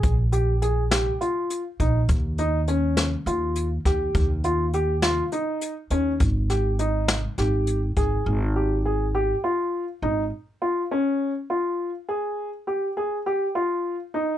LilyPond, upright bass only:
\new Staff \with { instrumentName = "Upright bass" } { \clef bass \time 7/8 \key ees \mixolydian \tempo 4 = 102 bes,,2 r4 bes,,8 | ees,2 ees,4 ees,8 | ees,2 r4 ees,8 | aes,,2 aes,,4 aes,,8 |
aes,,2 r4 aes,,8 | r2. r8 | r2. r8 | }